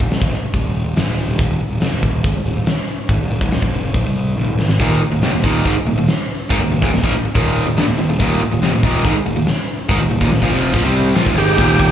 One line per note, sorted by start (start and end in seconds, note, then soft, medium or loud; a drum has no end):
0.00 0.10 D#1 medium
0.00 kick medium
0.11 0.21 D#1 medium
0.11 snare medium
0.11 open hi-hat medium
0.22 0.31 A#1 medium
0.22 kick medium
0.33 muted picked electric bass stroke soft
0.33 snare soft
0.33 open hi-hat soft
0.44 muted picked electric bass stroke soft
0.54 0.83 D#1 medium
0.54 kick loud
0.54 open hi-hat medium
0.76 open hi-hat soft
0.86 0.96 D#1 medium
0.96 1.06 G1 medium
0.96 snare loud
0.96 open hi-hat medium
1.08 1.17 D#1 medium
1.18 1.28 D#1 medium
1.18 open hi-hat soft
1.29 1.38 D#1 medium
1.39 1.59 D#1 medium
1.39 kick loud
1.39 open hi-hat medium
1.60 muted picked electric bass stroke soft
1.60 open hi-hat soft
1.70 1.80 D#1 medium
1.81 1.91 F1 medium
1.81 snare loud
1.81 open hi-hat medium
1.92 2.02 D#1 medium
2.03 2.23 D#1 medium
2.03 kick medium
2.03 snare soft
2.03 open hi-hat soft
2.24 2.34 G#1 medium
2.24 kick medium
2.24 open hi-hat medium
2.36 muted picked electric bass stroke soft
2.45 2.55 D#1 medium
2.45 open hi-hat soft
2.57 2.66 D#1 medium
2.66 snare loud
2.66 open hi-hat medium
2.88 open hi-hat soft
3.09 3.19 G#1 medium
3.09 kick loud
3.09 open hi-hat medium
3.21 3.30 D#1 medium
3.30 3.41 D#1 medium
3.30 open hi-hat soft
3.41 3.51 D#1 medium
3.41 kick loud
3.52 3.62 D#1 medium
3.52 snare medium
3.52 open hi-hat medium
3.62 3.72 A#1 medium
3.62 kick medium
3.73 3.94 F1 medium
3.73 open hi-hat soft
3.94 4.05 A#1 medium
3.94 kick loud
3.94 open hi-hat medium
4.06 4.35 C2 medium
4.16 open hi-hat soft
4.37 4.47 A#1 medium
4.37 high tom medium
4.48 4.58 D#1 medium
4.48 mid tom medium
4.59 4.79 G#1 medium
4.59 snare medium
4.69 snare medium
4.80 5.00 D#1 medium
4.80 5.01 D#2 medium
4.80 5.01 A#2 loud
4.80 5.01 D#3 loud
4.80 kick loud
4.80 open hi-hat medium
5.01 muted picked electric bass stroke soft
5.01 muted overdriven electric guitar stroke soft
5.01 open hi-hat soft
5.11 5.21 D#1 medium
5.11 5.22 D#2 medium
5.11 5.23 A#2 medium
5.22 5.32 F1 medium
5.22 5.33 F2 medium
5.22 5.33 C3 loud
5.22 snare loud
5.22 open hi-hat medium
5.33 5.43 D#1 medium
5.33 5.43 D#2 medium
5.33 5.43 A#2 medium
5.44 5.64 D#1 medium
5.44 5.64 D#2 medium
5.44 5.65 A#2 medium
5.44 5.65 D#3 loud
5.44 kick medium
5.44 open hi-hat soft
5.65 5.75 G#1 medium
5.65 5.75 G#2 medium
5.65 5.75 D#3 loud
5.65 kick loud
5.65 open hi-hat medium
5.76 muted picked electric bass stroke soft
5.76 muted overdriven electric guitar stroke medium
5.86 5.96 D#1 medium
5.86 5.97 D#2 medium
5.86 5.97 A#2 medium
5.86 open hi-hat soft
5.97 6.07 D#1 medium
5.97 6.08 D#2 medium
5.97 6.08 A#2 medium
6.08 snare medium
6.08 open hi-hat medium
6.30 open hi-hat soft
6.50 6.60 G#1 medium
6.50 6.60 G#2 medium
6.50 6.61 D#3 medium
6.50 kick loud
6.50 open hi-hat medium
6.62 6.71 D#1 medium
6.62 6.71 D#2 medium
6.62 6.71 A#2 medium
6.72 6.82 D#1 medium
6.72 6.81 D#2 medium
6.72 6.81 A#2 medium
6.72 open hi-hat soft
6.82 6.92 D#1 medium
6.82 6.92 D#2 medium
6.82 6.92 A#2 medium
6.82 kick loud
6.93 7.03 D#1 medium
6.93 7.03 D#2 medium
6.93 7.02 A#2 medium
6.93 snare medium
6.93 open hi-hat medium
7.03 7.13 A#1 loud
7.03 7.13 A#2 medium
7.03 7.13 F3 medium
7.03 kick medium
7.14 muted overdriven electric guitar stroke medium
7.14 muted picked electric bass stroke soft
7.14 open hi-hat soft
7.25 muted overdriven electric guitar stroke medium
7.25 muted picked electric bass stroke soft
7.35 7.65 D#1 medium
7.35 7.65 D#2 medium
7.35 7.66 A#2 medium
7.35 7.66 D#3 medium
7.35 kick loud
7.35 open hi-hat medium
7.57 open hi-hat soft
7.66 7.76 D#1 medium
7.66 7.77 D#2 medium
7.66 7.77 A#2 medium
7.77 7.87 G1 medium
7.77 7.87 G2 medium
7.77 7.87 D3 medium
7.77 snare loud
7.77 open hi-hat medium
7.87 7.98 D#1 medium
7.87 7.97 D#2 medium
7.87 7.97 A#2 medium
7.98 8.09 D#1 medium
7.98 8.08 D#2 medium
7.98 8.08 A#2 medium
7.98 open hi-hat soft
8.09 8.19 D#1 medium
8.09 8.18 D#2 medium
8.09 8.19 A#2 medium
8.20 8.40 D#1 medium
8.20 8.40 D#2 medium
8.20 8.40 A#2 medium
8.20 8.41 D#3 loud
8.20 kick medium
8.20 open hi-hat medium
8.41 muted picked electric bass stroke soft
8.41 muted overdriven electric guitar stroke medium
8.41 open hi-hat medium
8.51 8.62 D#1 medium
8.51 8.61 D#2 medium
8.51 8.62 A#2 medium
8.62 8.71 F1 medium
8.62 8.72 F2 loud
8.62 8.72 C3 loud
8.62 snare medium
8.62 open hi-hat medium
8.72 8.82 D#1 medium
8.72 8.83 D#2 medium
8.72 8.83 A#2 medium
8.83 9.03 D#1 loud
8.83 9.04 D#2 medium
8.83 9.04 A#2 medium
8.83 9.05 D#3 loud
8.83 kick medium
8.83 open hi-hat soft
9.05 9.14 G#1 medium
9.05 9.15 G#2 medium
9.05 9.15 D#3 medium
9.05 kick loud
9.05 open hi-hat medium
9.14 muted picked electric bass stroke soft
9.14 muted overdriven electric guitar stroke medium
9.25 9.34 D#1 medium
9.25 9.35 D#2 medium
9.25 9.35 A#2 medium
9.25 open hi-hat soft
9.35 9.45 D#1 medium
9.35 9.47 D#2 medium
9.35 9.47 A#2 medium
9.46 snare loud
9.46 open hi-hat medium
9.68 open hi-hat soft
9.89 9.98 G#1 medium
9.89 9.99 G#2 medium
9.89 9.99 D#3 loud
9.89 kick loud
9.89 open hi-hat medium
9.99 10.09 D#1 medium
9.99 10.09 D#2 medium
9.99 10.09 A#2 medium
10.10 10.20 D#1 medium
10.10 10.19 D#2 medium
10.10 10.20 A#2 medium
10.10 open hi-hat soft
10.20 10.30 D#1 medium
10.20 10.30 D#2 medium
10.20 10.30 A#2 medium
10.20 kick medium
10.31 10.41 D#1 medium
10.31 10.42 D#2 medium
10.31 10.41 A#2 medium
10.31 snare medium
10.31 open hi-hat medium
10.42 10.51 A#1 medium
10.42 10.52 A#2 medium
10.42 10.52 F3 medium
10.42 kick medium
10.52 10.72 F1 medium
10.52 10.73 F2 loud
10.52 10.73 C3 loud
10.52 10.73 F3 loud
10.52 open hi-hat soft
10.73 10.83 A#1 medium
10.73 10.83 A#2 medium
10.73 10.84 F3 loud
10.73 kick loud
10.73 open hi-hat medium
10.84 11.13 C2 loud
10.84 11.15 C3 medium
10.84 11.16 G3 loud
10.84 11.16 C4 medium
10.95 open hi-hat soft
11.15 11.25 A#1 loud
11.15 11.25 A#2 medium
11.15 11.26 F3 medium
11.15 snare loud
11.15 open hi-hat medium
11.26 11.36 D#1 medium
11.26 11.36 D#2 medium
11.26 11.36 A#2 medium
11.26 kick medium
11.37 11.56 G#1 medium
11.37 11.57 G#2 medium
11.37 11.58 D#3 medium
11.37 11.58 G#3 loud
11.37 11.91 G4 medium
11.37 open hi-hat medium
11.57 11.76 D#1 medium
11.57 11.91 D#2 medium
11.57 11.91 A#2 medium
11.57 11.91 D#3 loud
11.57 kick loud
11.57 crash loud
11.57 crash medium
11.79 11.91 D#1 medium
11.79 kick medium
11.79 crash medium